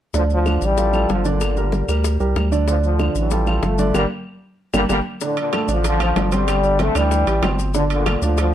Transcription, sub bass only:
0.14 0.58 D2 medium
0.61 1.06 A1 medium
1.09 1.83 G1 medium
1.88 2.18 D2 medium
2.20 2.35 C2 medium
2.36 3.10 D2 medium
3.15 3.59 A1 medium
3.62 3.92 G1 medium
3.94 4.06 G1 medium
4.73 4.85 G1 loud
4.89 5.01 G1 medium
5.68 6.13 A1 medium
6.16 6.89 G1 medium
6.95 7.25 D2 medium
7.27 7.42 A1 medium
7.42 8.16 G1 medium
8.22 8.54 D2 medium

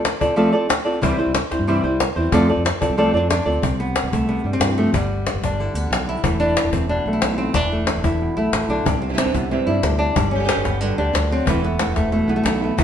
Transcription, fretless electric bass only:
1.02 1.21 C2 loud
1.26 1.39 C2 medium
1.59 1.78 G2 medium
1.83 2.08 C2 medium
2.16 2.29 E2 medium
2.32 2.51 F2 loud
2.56 2.69 F2 medium
2.90 3.08 C2 medium
3.14 3.39 F2 medium
3.46 3.59 D2 medium
3.62 3.94 C2 medium
4.03 4.10 C2 medium
4.12 4.37 C2 medium
4.44 4.57 G2 medium
4.60 4.85 G2 loud
4.93 5.24 G1 medium
5.34 5.40 G1 medium
5.42 5.67 G1 medium
5.74 5.87 D2 medium
5.91 6.16 B1 loud
6.23 6.55 E1 medium
6.65 6.71 E1 medium
6.72 6.98 E1 medium
7.06 7.18 B1 medium
7.22 7.47 B1 loud
7.56 7.86 E1 medium
7.95 8.02 E1 medium
8.03 8.28 E1 medium
8.37 8.49 B1 medium
8.53 8.68 A1 medium
8.69 8.84 B1 medium
8.85 9.17 C2 medium
9.26 9.33 C2 medium
9.34 9.59 C2 medium
9.67 9.80 G2 medium
9.83 10.08 D2 loud
10.16 10.47 G1 medium
10.57 10.63 G1 medium
10.66 10.91 G1 medium
10.98 11.11 D2 medium
11.14 11.39 D2 loud
11.46 11.77 E1 medium
11.87 11.94 E1 medium
11.96 12.21 E1 medium
12.28 12.41 B1 medium
12.45 12.70 B1 loud
12.77 12.84 E1 medium

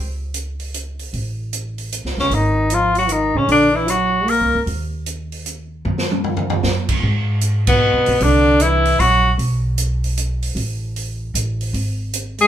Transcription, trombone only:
2.19 2.34 C#3 medium
2.32 2.72 D#3 medium
2.71 2.95 F3 medium
2.96 3.11 F#3 medium
3.10 3.37 D#3 medium
3.35 3.47 C#3 medium
3.48 3.75 D3 medium
3.73 3.88 E3 medium
3.87 4.27 F#3 medium
4.26 4.59 A#3 medium
7.67 8.23 B2 medium
8.22 8.64 D3 medium
8.62 9.03 E3 medium
9.01 9.32 F#3 medium
12.40 12.47 G#3 medium

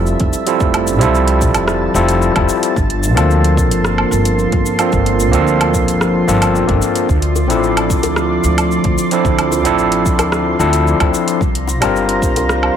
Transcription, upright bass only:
0.00 0.13 F1 medium
0.21 0.29 F1 medium
0.60 1.00 F1 medium
1.00 1.55 C2 medium
1.55 1.89 F1 loud
1.94 2.29 F1 loud
2.36 2.45 F1 medium
2.76 3.17 G1 loud
3.17 3.71 D2 medium
3.71 4.05 G1 loud
4.11 4.45 G1 loud
4.53 4.62 G1 medium
4.93 5.34 G1 medium
5.34 5.88 D2 medium
5.88 6.21 G1 medium
6.28 6.62 G1 loud
6.69 6.78 G1 loud
7.09 7.50 D2 loud
7.50 8.04 A1 loud
8.04 8.37 D2 loud
8.44 8.78 D2 loud
8.85 8.94 D2 medium
9.25 9.65 D2 medium
9.65 10.19 A1 medium
10.19 10.53 D2 loud
10.59 10.94 D2 loud
11.00 11.10 D2 medium
11.41 11.82 C2 medium
11.82 12.36 G1 medium
12.36 12.70 C2 loud

